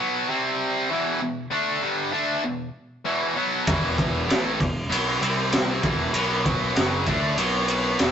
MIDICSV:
0, 0, Header, 1, 4, 480
1, 0, Start_track
1, 0, Key_signature, 1, "minor"
1, 0, Tempo, 617284
1, 928, Time_signature, 4, 2, 24, 8
1, 6311, End_track
2, 0, Start_track
2, 0, Title_t, "Distorted electric guitar"
2, 0, Program_c, 0, 30
2, 0, Note_on_c, 0, 47, 84
2, 0, Note_on_c, 0, 54, 91
2, 0, Note_on_c, 0, 59, 92
2, 203, Note_off_c, 0, 47, 0
2, 207, Note_off_c, 0, 54, 0
2, 210, Note_off_c, 0, 59, 0
2, 220, Note_on_c, 0, 48, 89
2, 224, Note_on_c, 0, 55, 88
2, 231, Note_on_c, 0, 60, 96
2, 687, Note_off_c, 0, 48, 0
2, 689, Note_off_c, 0, 55, 0
2, 692, Note_off_c, 0, 60, 0
2, 692, Note_on_c, 0, 40, 95
2, 701, Note_on_c, 0, 47, 97
2, 705, Note_on_c, 0, 52, 94
2, 923, Note_off_c, 0, 40, 0
2, 927, Note_off_c, 0, 47, 0
2, 929, Note_off_c, 0, 52, 0
2, 941, Note_on_c, 0, 40, 62
2, 943, Note_on_c, 0, 47, 73
2, 1127, Note_off_c, 0, 40, 0
2, 1128, Note_off_c, 0, 47, 0
2, 1171, Note_on_c, 0, 50, 88
2, 1177, Note_on_c, 0, 57, 94
2, 1182, Note_on_c, 0, 62, 89
2, 1402, Note_off_c, 0, 50, 0
2, 1405, Note_off_c, 0, 57, 0
2, 1408, Note_off_c, 0, 62, 0
2, 1416, Note_on_c, 0, 43, 78
2, 1420, Note_on_c, 0, 50, 99
2, 1424, Note_on_c, 0, 55, 89
2, 1643, Note_off_c, 0, 50, 0
2, 1645, Note_off_c, 0, 43, 0
2, 1649, Note_off_c, 0, 55, 0
2, 1652, Note_on_c, 0, 50, 87
2, 1658, Note_on_c, 0, 57, 84
2, 1662, Note_on_c, 0, 62, 93
2, 1883, Note_off_c, 0, 50, 0
2, 1886, Note_off_c, 0, 57, 0
2, 1888, Note_off_c, 0, 62, 0
2, 1890, Note_on_c, 0, 40, 57
2, 1897, Note_on_c, 0, 47, 67
2, 2081, Note_off_c, 0, 40, 0
2, 2084, Note_off_c, 0, 47, 0
2, 2370, Note_on_c, 0, 40, 85
2, 2375, Note_on_c, 0, 47, 87
2, 2378, Note_on_c, 0, 52, 90
2, 2602, Note_off_c, 0, 40, 0
2, 2602, Note_off_c, 0, 47, 0
2, 2606, Note_off_c, 0, 52, 0
2, 2611, Note_on_c, 0, 47, 99
2, 2615, Note_on_c, 0, 54, 98
2, 2622, Note_on_c, 0, 59, 96
2, 2843, Note_off_c, 0, 47, 0
2, 2844, Note_off_c, 0, 54, 0
2, 2848, Note_off_c, 0, 59, 0
2, 2853, Note_on_c, 0, 40, 92
2, 2861, Note_on_c, 0, 47, 96
2, 2866, Note_on_c, 0, 52, 97
2, 3321, Note_off_c, 0, 47, 0
2, 3324, Note_off_c, 0, 40, 0
2, 3324, Note_off_c, 0, 52, 0
2, 3324, Note_on_c, 0, 45, 85
2, 3333, Note_on_c, 0, 52, 89
2, 3337, Note_on_c, 0, 57, 86
2, 3559, Note_off_c, 0, 45, 0
2, 3564, Note_off_c, 0, 52, 0
2, 3565, Note_on_c, 0, 40, 63
2, 3566, Note_off_c, 0, 57, 0
2, 3568, Note_on_c, 0, 47, 71
2, 3759, Note_off_c, 0, 40, 0
2, 3761, Note_off_c, 0, 47, 0
2, 3807, Note_on_c, 0, 47, 82
2, 3810, Note_on_c, 0, 54, 96
2, 3816, Note_on_c, 0, 59, 94
2, 4041, Note_off_c, 0, 47, 0
2, 4043, Note_off_c, 0, 54, 0
2, 4045, Note_off_c, 0, 59, 0
2, 4046, Note_on_c, 0, 48, 83
2, 4051, Note_on_c, 0, 55, 88
2, 4059, Note_on_c, 0, 60, 85
2, 4521, Note_off_c, 0, 48, 0
2, 4522, Note_on_c, 0, 40, 90
2, 4523, Note_off_c, 0, 55, 0
2, 4527, Note_off_c, 0, 60, 0
2, 4530, Note_on_c, 0, 47, 98
2, 4536, Note_on_c, 0, 52, 99
2, 4757, Note_off_c, 0, 47, 0
2, 4759, Note_off_c, 0, 40, 0
2, 4766, Note_off_c, 0, 52, 0
2, 4767, Note_on_c, 0, 47, 98
2, 4775, Note_on_c, 0, 54, 93
2, 4778, Note_on_c, 0, 59, 106
2, 5241, Note_off_c, 0, 47, 0
2, 5241, Note_on_c, 0, 42, 88
2, 5242, Note_off_c, 0, 54, 0
2, 5247, Note_off_c, 0, 59, 0
2, 5251, Note_on_c, 0, 49, 86
2, 5251, Note_on_c, 0, 54, 88
2, 5478, Note_off_c, 0, 42, 0
2, 5483, Note_off_c, 0, 49, 0
2, 5483, Note_off_c, 0, 54, 0
2, 5491, Note_on_c, 0, 50, 77
2, 5501, Note_on_c, 0, 57, 94
2, 5506, Note_on_c, 0, 62, 98
2, 5724, Note_off_c, 0, 50, 0
2, 5728, Note_off_c, 0, 57, 0
2, 5731, Note_off_c, 0, 62, 0
2, 5734, Note_on_c, 0, 47, 93
2, 5743, Note_on_c, 0, 54, 93
2, 5746, Note_on_c, 0, 59, 96
2, 6205, Note_off_c, 0, 47, 0
2, 6209, Note_off_c, 0, 54, 0
2, 6211, Note_off_c, 0, 59, 0
2, 6219, Note_on_c, 0, 40, 85
2, 6225, Note_on_c, 0, 47, 88
2, 6228, Note_on_c, 0, 52, 91
2, 6311, Note_off_c, 0, 40, 0
2, 6311, Note_off_c, 0, 47, 0
2, 6311, Note_off_c, 0, 52, 0
2, 6311, End_track
3, 0, Start_track
3, 0, Title_t, "Picked electric bass"
3, 0, Program_c, 1, 34
3, 2856, Note_on_c, 1, 28, 90
3, 3301, Note_off_c, 1, 28, 0
3, 3328, Note_on_c, 1, 33, 83
3, 3552, Note_off_c, 1, 33, 0
3, 3580, Note_on_c, 1, 28, 69
3, 3798, Note_off_c, 1, 28, 0
3, 3811, Note_on_c, 1, 35, 87
3, 4033, Note_off_c, 1, 35, 0
3, 4052, Note_on_c, 1, 36, 91
3, 4500, Note_off_c, 1, 36, 0
3, 4541, Note_on_c, 1, 28, 91
3, 4759, Note_off_c, 1, 28, 0
3, 4773, Note_on_c, 1, 35, 83
3, 5220, Note_off_c, 1, 35, 0
3, 5259, Note_on_c, 1, 30, 87
3, 5478, Note_off_c, 1, 30, 0
3, 5500, Note_on_c, 1, 38, 87
3, 5718, Note_off_c, 1, 38, 0
3, 5735, Note_on_c, 1, 35, 91
3, 6182, Note_off_c, 1, 35, 0
3, 6220, Note_on_c, 1, 28, 98
3, 6311, Note_off_c, 1, 28, 0
3, 6311, End_track
4, 0, Start_track
4, 0, Title_t, "Drums"
4, 2854, Note_on_c, 9, 51, 89
4, 2857, Note_on_c, 9, 36, 113
4, 2931, Note_off_c, 9, 51, 0
4, 2935, Note_off_c, 9, 36, 0
4, 3097, Note_on_c, 9, 36, 86
4, 3099, Note_on_c, 9, 51, 62
4, 3175, Note_off_c, 9, 36, 0
4, 3177, Note_off_c, 9, 51, 0
4, 3344, Note_on_c, 9, 51, 84
4, 3351, Note_on_c, 9, 38, 103
4, 3422, Note_off_c, 9, 51, 0
4, 3429, Note_off_c, 9, 38, 0
4, 3579, Note_on_c, 9, 36, 87
4, 3579, Note_on_c, 9, 51, 64
4, 3657, Note_off_c, 9, 36, 0
4, 3657, Note_off_c, 9, 51, 0
4, 3826, Note_on_c, 9, 51, 91
4, 3903, Note_off_c, 9, 51, 0
4, 4062, Note_on_c, 9, 51, 68
4, 4140, Note_off_c, 9, 51, 0
4, 4295, Note_on_c, 9, 51, 95
4, 4302, Note_on_c, 9, 38, 113
4, 4372, Note_off_c, 9, 51, 0
4, 4379, Note_off_c, 9, 38, 0
4, 4534, Note_on_c, 9, 51, 66
4, 4538, Note_on_c, 9, 36, 106
4, 4612, Note_off_c, 9, 51, 0
4, 4615, Note_off_c, 9, 36, 0
4, 4772, Note_on_c, 9, 51, 89
4, 4850, Note_off_c, 9, 51, 0
4, 5020, Note_on_c, 9, 36, 81
4, 5020, Note_on_c, 9, 51, 64
4, 5098, Note_off_c, 9, 36, 0
4, 5098, Note_off_c, 9, 51, 0
4, 5257, Note_on_c, 9, 51, 93
4, 5264, Note_on_c, 9, 38, 103
4, 5335, Note_off_c, 9, 51, 0
4, 5342, Note_off_c, 9, 38, 0
4, 5492, Note_on_c, 9, 51, 69
4, 5499, Note_on_c, 9, 36, 83
4, 5570, Note_off_c, 9, 51, 0
4, 5577, Note_off_c, 9, 36, 0
4, 5735, Note_on_c, 9, 51, 94
4, 5812, Note_off_c, 9, 51, 0
4, 5973, Note_on_c, 9, 51, 66
4, 6051, Note_off_c, 9, 51, 0
4, 6212, Note_on_c, 9, 51, 91
4, 6219, Note_on_c, 9, 38, 106
4, 6289, Note_off_c, 9, 51, 0
4, 6296, Note_off_c, 9, 38, 0
4, 6311, End_track
0, 0, End_of_file